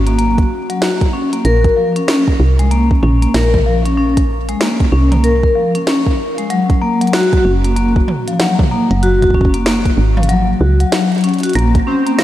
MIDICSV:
0, 0, Header, 1, 5, 480
1, 0, Start_track
1, 0, Key_signature, -5, "minor"
1, 0, Tempo, 631579
1, 1101, Time_signature, 4, 2, 24, 8
1, 9302, End_track
2, 0, Start_track
2, 0, Title_t, "Synth texture"
2, 0, Program_c, 0, 99
2, 8781, Note_on_c, 0, 60, 88
2, 8781, Note_on_c, 0, 72, 84
2, 9302, Note_off_c, 0, 60, 0
2, 9302, Note_off_c, 0, 72, 0
2, 9302, End_track
3, 0, Start_track
3, 0, Title_t, "Vibraphone"
3, 0, Program_c, 1, 11
3, 50, Note_on_c, 1, 58, 76
3, 128, Note_off_c, 1, 58, 0
3, 141, Note_on_c, 1, 58, 98
3, 226, Note_off_c, 1, 58, 0
3, 530, Note_on_c, 1, 54, 73
3, 582, Note_off_c, 1, 54, 0
3, 621, Note_on_c, 1, 66, 78
3, 706, Note_off_c, 1, 66, 0
3, 861, Note_on_c, 1, 61, 72
3, 912, Note_off_c, 1, 61, 0
3, 1010, Note_on_c, 1, 58, 74
3, 1088, Note_off_c, 1, 58, 0
3, 1101, Note_on_c, 1, 70, 100
3, 1228, Note_off_c, 1, 70, 0
3, 1250, Note_on_c, 1, 70, 75
3, 1281, Note_off_c, 1, 70, 0
3, 1341, Note_on_c, 1, 53, 72
3, 1426, Note_off_c, 1, 53, 0
3, 1490, Note_on_c, 1, 61, 73
3, 1568, Note_off_c, 1, 61, 0
3, 1581, Note_on_c, 1, 61, 104
3, 1666, Note_off_c, 1, 61, 0
3, 1970, Note_on_c, 1, 56, 79
3, 2022, Note_off_c, 1, 56, 0
3, 2062, Note_on_c, 1, 58, 99
3, 2146, Note_off_c, 1, 58, 0
3, 2302, Note_on_c, 1, 61, 93
3, 2428, Note_off_c, 1, 61, 0
3, 2451, Note_on_c, 1, 58, 74
3, 2481, Note_off_c, 1, 58, 0
3, 2541, Note_on_c, 1, 70, 101
3, 2668, Note_off_c, 1, 70, 0
3, 2690, Note_on_c, 1, 70, 71
3, 2721, Note_off_c, 1, 70, 0
3, 2781, Note_on_c, 1, 53, 75
3, 2866, Note_off_c, 1, 53, 0
3, 2930, Note_on_c, 1, 61, 76
3, 3008, Note_off_c, 1, 61, 0
3, 3021, Note_on_c, 1, 61, 102
3, 3106, Note_off_c, 1, 61, 0
3, 3410, Note_on_c, 1, 56, 79
3, 3462, Note_off_c, 1, 56, 0
3, 3501, Note_on_c, 1, 58, 101
3, 3586, Note_off_c, 1, 58, 0
3, 3741, Note_on_c, 1, 61, 96
3, 3868, Note_off_c, 1, 61, 0
3, 3890, Note_on_c, 1, 58, 80
3, 3921, Note_off_c, 1, 58, 0
3, 3981, Note_on_c, 1, 70, 100
3, 4108, Note_off_c, 1, 70, 0
3, 4130, Note_on_c, 1, 70, 74
3, 4161, Note_off_c, 1, 70, 0
3, 4221, Note_on_c, 1, 53, 72
3, 4306, Note_off_c, 1, 53, 0
3, 4370, Note_on_c, 1, 61, 75
3, 4448, Note_off_c, 1, 61, 0
3, 4461, Note_on_c, 1, 61, 98
3, 4546, Note_off_c, 1, 61, 0
3, 4850, Note_on_c, 1, 56, 75
3, 4902, Note_off_c, 1, 56, 0
3, 4941, Note_on_c, 1, 54, 105
3, 5026, Note_off_c, 1, 54, 0
3, 5181, Note_on_c, 1, 58, 99
3, 5308, Note_off_c, 1, 58, 0
3, 5330, Note_on_c, 1, 54, 77
3, 5361, Note_off_c, 1, 54, 0
3, 5421, Note_on_c, 1, 66, 104
3, 5548, Note_off_c, 1, 66, 0
3, 5570, Note_on_c, 1, 66, 80
3, 5601, Note_off_c, 1, 66, 0
3, 5661, Note_on_c, 1, 61, 73
3, 5746, Note_off_c, 1, 61, 0
3, 5810, Note_on_c, 1, 58, 77
3, 5888, Note_off_c, 1, 58, 0
3, 5901, Note_on_c, 1, 58, 98
3, 5985, Note_off_c, 1, 58, 0
3, 6290, Note_on_c, 1, 53, 74
3, 6342, Note_off_c, 1, 53, 0
3, 6381, Note_on_c, 1, 54, 99
3, 6466, Note_off_c, 1, 54, 0
3, 6621, Note_on_c, 1, 58, 98
3, 6748, Note_off_c, 1, 58, 0
3, 6770, Note_on_c, 1, 54, 72
3, 6801, Note_off_c, 1, 54, 0
3, 6861, Note_on_c, 1, 66, 107
3, 6988, Note_off_c, 1, 66, 0
3, 7010, Note_on_c, 1, 66, 77
3, 7041, Note_off_c, 1, 66, 0
3, 7101, Note_on_c, 1, 61, 76
3, 7186, Note_off_c, 1, 61, 0
3, 7250, Note_on_c, 1, 58, 76
3, 7328, Note_off_c, 1, 58, 0
3, 7341, Note_on_c, 1, 58, 101
3, 7426, Note_off_c, 1, 58, 0
3, 7730, Note_on_c, 1, 53, 76
3, 7782, Note_off_c, 1, 53, 0
3, 7821, Note_on_c, 1, 54, 98
3, 7906, Note_off_c, 1, 54, 0
3, 8061, Note_on_c, 1, 66, 71
3, 8146, Note_off_c, 1, 66, 0
3, 8210, Note_on_c, 1, 54, 73
3, 8241, Note_off_c, 1, 54, 0
3, 8301, Note_on_c, 1, 54, 83
3, 8386, Note_off_c, 1, 54, 0
3, 8450, Note_on_c, 1, 54, 71
3, 8528, Note_off_c, 1, 54, 0
3, 8541, Note_on_c, 1, 61, 73
3, 8625, Note_off_c, 1, 61, 0
3, 8690, Note_on_c, 1, 66, 75
3, 8768, Note_off_c, 1, 66, 0
3, 8781, Note_on_c, 1, 58, 104
3, 8866, Note_off_c, 1, 58, 0
3, 9021, Note_on_c, 1, 61, 95
3, 9148, Note_off_c, 1, 61, 0
3, 9170, Note_on_c, 1, 58, 76
3, 9201, Note_off_c, 1, 58, 0
3, 9261, Note_on_c, 1, 53, 86
3, 9302, Note_off_c, 1, 53, 0
3, 9302, End_track
4, 0, Start_track
4, 0, Title_t, "FM bass"
4, 0, Program_c, 2, 39
4, 0, Note_on_c, 2, 32, 86
4, 337, Note_off_c, 2, 32, 0
4, 1102, Note_on_c, 2, 34, 98
4, 1286, Note_off_c, 2, 34, 0
4, 1822, Note_on_c, 2, 36, 88
4, 2257, Note_off_c, 2, 36, 0
4, 2302, Note_on_c, 2, 34, 104
4, 2486, Note_off_c, 2, 34, 0
4, 2542, Note_on_c, 2, 34, 98
4, 3457, Note_off_c, 2, 34, 0
4, 3742, Note_on_c, 2, 36, 91
4, 4177, Note_off_c, 2, 36, 0
4, 5661, Note_on_c, 2, 30, 90
4, 6097, Note_off_c, 2, 30, 0
4, 6770, Note_on_c, 2, 30, 104
4, 7537, Note_off_c, 2, 30, 0
4, 7581, Note_on_c, 2, 32, 85
4, 8017, Note_off_c, 2, 32, 0
4, 8061, Note_on_c, 2, 37, 100
4, 8246, Note_off_c, 2, 37, 0
4, 8781, Note_on_c, 2, 34, 99
4, 8966, Note_off_c, 2, 34, 0
4, 9302, End_track
5, 0, Start_track
5, 0, Title_t, "Drums"
5, 50, Note_on_c, 9, 42, 50
5, 126, Note_off_c, 9, 42, 0
5, 142, Note_on_c, 9, 42, 64
5, 218, Note_off_c, 9, 42, 0
5, 290, Note_on_c, 9, 36, 122
5, 290, Note_on_c, 9, 42, 36
5, 366, Note_off_c, 9, 36, 0
5, 366, Note_off_c, 9, 42, 0
5, 530, Note_on_c, 9, 42, 51
5, 606, Note_off_c, 9, 42, 0
5, 621, Note_on_c, 9, 38, 119
5, 621, Note_on_c, 9, 42, 65
5, 697, Note_off_c, 9, 38, 0
5, 697, Note_off_c, 9, 42, 0
5, 770, Note_on_c, 9, 36, 121
5, 770, Note_on_c, 9, 42, 37
5, 846, Note_off_c, 9, 36, 0
5, 846, Note_off_c, 9, 42, 0
5, 1010, Note_on_c, 9, 42, 50
5, 1086, Note_off_c, 9, 42, 0
5, 1101, Note_on_c, 9, 42, 64
5, 1177, Note_off_c, 9, 42, 0
5, 1250, Note_on_c, 9, 36, 116
5, 1250, Note_on_c, 9, 42, 33
5, 1326, Note_off_c, 9, 36, 0
5, 1326, Note_off_c, 9, 42, 0
5, 1490, Note_on_c, 9, 42, 50
5, 1566, Note_off_c, 9, 42, 0
5, 1582, Note_on_c, 9, 38, 109
5, 1582, Note_on_c, 9, 42, 60
5, 1658, Note_off_c, 9, 38, 0
5, 1658, Note_off_c, 9, 42, 0
5, 1730, Note_on_c, 9, 36, 98
5, 1806, Note_off_c, 9, 36, 0
5, 1970, Note_on_c, 9, 42, 49
5, 2046, Note_off_c, 9, 42, 0
5, 2061, Note_on_c, 9, 42, 60
5, 2137, Note_off_c, 9, 42, 0
5, 2210, Note_on_c, 9, 36, 120
5, 2286, Note_off_c, 9, 36, 0
5, 2301, Note_on_c, 9, 45, 84
5, 2377, Note_off_c, 9, 45, 0
5, 2450, Note_on_c, 9, 42, 49
5, 2526, Note_off_c, 9, 42, 0
5, 2541, Note_on_c, 9, 38, 115
5, 2541, Note_on_c, 9, 42, 62
5, 2617, Note_off_c, 9, 38, 0
5, 2617, Note_off_c, 9, 42, 0
5, 2690, Note_on_c, 9, 36, 114
5, 2690, Note_on_c, 9, 45, 100
5, 2766, Note_off_c, 9, 36, 0
5, 2766, Note_off_c, 9, 45, 0
5, 2930, Note_on_c, 9, 42, 50
5, 3006, Note_off_c, 9, 42, 0
5, 3170, Note_on_c, 9, 36, 101
5, 3170, Note_on_c, 9, 42, 61
5, 3246, Note_off_c, 9, 36, 0
5, 3246, Note_off_c, 9, 42, 0
5, 3410, Note_on_c, 9, 42, 49
5, 3486, Note_off_c, 9, 42, 0
5, 3501, Note_on_c, 9, 38, 111
5, 3501, Note_on_c, 9, 42, 58
5, 3577, Note_off_c, 9, 38, 0
5, 3577, Note_off_c, 9, 42, 0
5, 3650, Note_on_c, 9, 36, 112
5, 3650, Note_on_c, 9, 42, 33
5, 3726, Note_off_c, 9, 36, 0
5, 3726, Note_off_c, 9, 42, 0
5, 3890, Note_on_c, 9, 42, 50
5, 3890, Note_on_c, 9, 45, 99
5, 3966, Note_off_c, 9, 42, 0
5, 3966, Note_off_c, 9, 45, 0
5, 3981, Note_on_c, 9, 42, 60
5, 4057, Note_off_c, 9, 42, 0
5, 4130, Note_on_c, 9, 36, 115
5, 4206, Note_off_c, 9, 36, 0
5, 4370, Note_on_c, 9, 42, 51
5, 4446, Note_off_c, 9, 42, 0
5, 4461, Note_on_c, 9, 38, 112
5, 4461, Note_on_c, 9, 42, 64
5, 4537, Note_off_c, 9, 38, 0
5, 4537, Note_off_c, 9, 42, 0
5, 4610, Note_on_c, 9, 36, 103
5, 4686, Note_off_c, 9, 36, 0
5, 4850, Note_on_c, 9, 42, 49
5, 4926, Note_off_c, 9, 42, 0
5, 4941, Note_on_c, 9, 42, 62
5, 5017, Note_off_c, 9, 42, 0
5, 5090, Note_on_c, 9, 36, 112
5, 5090, Note_on_c, 9, 42, 36
5, 5166, Note_off_c, 9, 36, 0
5, 5166, Note_off_c, 9, 42, 0
5, 5330, Note_on_c, 9, 42, 51
5, 5376, Note_off_c, 9, 42, 0
5, 5376, Note_on_c, 9, 42, 40
5, 5421, Note_off_c, 9, 42, 0
5, 5421, Note_on_c, 9, 38, 106
5, 5421, Note_on_c, 9, 42, 60
5, 5496, Note_off_c, 9, 42, 0
5, 5496, Note_on_c, 9, 42, 26
5, 5497, Note_off_c, 9, 38, 0
5, 5570, Note_off_c, 9, 42, 0
5, 5570, Note_on_c, 9, 36, 105
5, 5570, Note_on_c, 9, 42, 34
5, 5646, Note_off_c, 9, 36, 0
5, 5646, Note_off_c, 9, 42, 0
5, 5810, Note_on_c, 9, 42, 51
5, 5886, Note_off_c, 9, 42, 0
5, 5901, Note_on_c, 9, 42, 60
5, 5977, Note_off_c, 9, 42, 0
5, 6050, Note_on_c, 9, 36, 105
5, 6126, Note_off_c, 9, 36, 0
5, 6141, Note_on_c, 9, 45, 89
5, 6217, Note_off_c, 9, 45, 0
5, 6290, Note_on_c, 9, 42, 49
5, 6366, Note_off_c, 9, 42, 0
5, 6381, Note_on_c, 9, 38, 110
5, 6381, Note_on_c, 9, 42, 59
5, 6457, Note_off_c, 9, 38, 0
5, 6457, Note_off_c, 9, 42, 0
5, 6530, Note_on_c, 9, 36, 113
5, 6530, Note_on_c, 9, 45, 102
5, 6606, Note_off_c, 9, 36, 0
5, 6606, Note_off_c, 9, 45, 0
5, 6770, Note_on_c, 9, 42, 49
5, 6846, Note_off_c, 9, 42, 0
5, 6862, Note_on_c, 9, 42, 67
5, 6938, Note_off_c, 9, 42, 0
5, 7010, Note_on_c, 9, 36, 52
5, 7010, Note_on_c, 9, 42, 36
5, 7021, Note_off_c, 9, 36, 0
5, 7021, Note_on_c, 9, 36, 61
5, 7071, Note_off_c, 9, 36, 0
5, 7071, Note_on_c, 9, 36, 70
5, 7086, Note_off_c, 9, 42, 0
5, 7101, Note_off_c, 9, 36, 0
5, 7101, Note_on_c, 9, 36, 82
5, 7151, Note_off_c, 9, 36, 0
5, 7151, Note_on_c, 9, 36, 93
5, 7181, Note_off_c, 9, 36, 0
5, 7181, Note_on_c, 9, 36, 100
5, 7250, Note_on_c, 9, 42, 53
5, 7257, Note_off_c, 9, 36, 0
5, 7326, Note_off_c, 9, 42, 0
5, 7341, Note_on_c, 9, 38, 108
5, 7341, Note_on_c, 9, 42, 64
5, 7417, Note_off_c, 9, 38, 0
5, 7417, Note_off_c, 9, 42, 0
5, 7490, Note_on_c, 9, 36, 99
5, 7490, Note_on_c, 9, 42, 36
5, 7566, Note_off_c, 9, 36, 0
5, 7566, Note_off_c, 9, 42, 0
5, 7730, Note_on_c, 9, 45, 94
5, 7775, Note_on_c, 9, 42, 52
5, 7806, Note_off_c, 9, 45, 0
5, 7821, Note_off_c, 9, 42, 0
5, 7821, Note_on_c, 9, 42, 63
5, 7897, Note_off_c, 9, 42, 0
5, 8210, Note_on_c, 9, 42, 54
5, 8286, Note_off_c, 9, 42, 0
5, 8301, Note_on_c, 9, 38, 111
5, 8301, Note_on_c, 9, 42, 64
5, 8377, Note_off_c, 9, 38, 0
5, 8377, Note_off_c, 9, 42, 0
5, 8450, Note_on_c, 9, 42, 17
5, 8472, Note_off_c, 9, 42, 0
5, 8472, Note_on_c, 9, 42, 19
5, 8495, Note_off_c, 9, 42, 0
5, 8495, Note_on_c, 9, 42, 23
5, 8518, Note_off_c, 9, 42, 0
5, 8518, Note_on_c, 9, 42, 24
5, 8541, Note_off_c, 9, 42, 0
5, 8541, Note_on_c, 9, 42, 53
5, 8578, Note_off_c, 9, 42, 0
5, 8578, Note_on_c, 9, 42, 29
5, 8615, Note_off_c, 9, 42, 0
5, 8615, Note_on_c, 9, 42, 30
5, 8653, Note_off_c, 9, 42, 0
5, 8653, Note_on_c, 9, 42, 32
5, 8665, Note_off_c, 9, 42, 0
5, 8665, Note_on_c, 9, 42, 34
5, 8690, Note_off_c, 9, 42, 0
5, 8690, Note_on_c, 9, 42, 72
5, 8705, Note_off_c, 9, 42, 0
5, 8705, Note_on_c, 9, 42, 38
5, 8736, Note_off_c, 9, 42, 0
5, 8736, Note_on_c, 9, 42, 43
5, 8766, Note_off_c, 9, 42, 0
5, 8766, Note_on_c, 9, 42, 48
5, 8781, Note_off_c, 9, 42, 0
5, 8781, Note_on_c, 9, 42, 86
5, 8781, Note_on_c, 9, 75, 54
5, 8857, Note_off_c, 9, 42, 0
5, 8857, Note_off_c, 9, 75, 0
5, 8930, Note_on_c, 9, 36, 112
5, 8930, Note_on_c, 9, 42, 36
5, 9006, Note_off_c, 9, 36, 0
5, 9006, Note_off_c, 9, 42, 0
5, 9170, Note_on_c, 9, 42, 55
5, 9246, Note_off_c, 9, 42, 0
5, 9261, Note_on_c, 9, 38, 115
5, 9261, Note_on_c, 9, 42, 68
5, 9261, Note_on_c, 9, 75, 76
5, 9302, Note_off_c, 9, 38, 0
5, 9302, Note_off_c, 9, 42, 0
5, 9302, Note_off_c, 9, 75, 0
5, 9302, End_track
0, 0, End_of_file